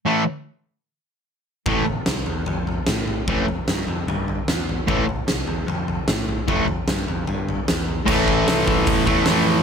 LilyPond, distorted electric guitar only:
\new Staff \with { instrumentName = "Distorted electric guitar" } { \clef bass \time 4/4 \key a \minor \tempo 4 = 150 <a, e a>8 r2. r8 | <a, e a>8 r2. r8 | <a, e a>8 r2. r8 | <a, e a>8 r2. r8 |
<a, e a>8 r2. r8 | <a, e a>2~ <a, e a>8 <a, e a>8 <a, e a>4 | }